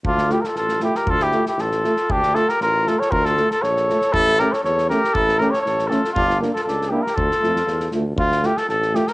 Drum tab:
SD |-ooooooo|-ooooooo|-oooo-oo|-ooooooo|
BD |o-------|o-------|o-------|o-------|

SD |-ooooooo|-ooooooo|-ooooo-o|-oooooo-|
BD |o-------|o-------|o-------|o-------|

SD |-ooooooo|
BD |o-------|